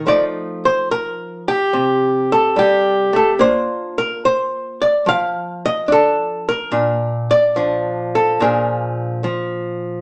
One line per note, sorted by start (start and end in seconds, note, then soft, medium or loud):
0.07 3.39 F3 medium
0.07 0.94 A3 soft
0.07 3.37 D#4 soft
0.07 2.32 F4 soft
0.07 0.24 D5 medium
0.65 0.90 C5 medium
0.91 1.47 A#4 medium
1.48 2.57 G4 medium
1.73 3.36 C3 medium
2.32 3.14 A4 medium
2.56 3.13 G3 medium
2.56 3.41 G4 medium
3.13 3.39 A3 medium
3.13 3.31 A4 medium
3.39 6.89 A#3 medium
3.39 4.28 D4 soft
3.39 6.72 F4 soft
3.39 3.97 C5 medium
3.98 4.23 A#4 medium
4.25 5.64 C5 medium
4.82 5.07 D5 medium
5.06 6.71 F3 medium
5.06 5.64 F5 loud
5.66 5.91 D#5 medium
5.88 6.69 D4 medium
5.92 6.48 A4 medium
6.49 8.15 A#4 medium
6.72 8.36 A#2 medium
6.72 7.56 D4 soft
7.31 8.40 D5 loud
7.56 8.40 F3 medium
7.56 8.37 D4 soft
8.15 8.41 A4 medium
8.40 10.01 A#2 medium
8.40 9.23 F3 soft
8.40 10.01 D4 soft
8.40 10.01 G#4 soft
8.40 10.01 A#4 medium
9.24 10.01 F3 medium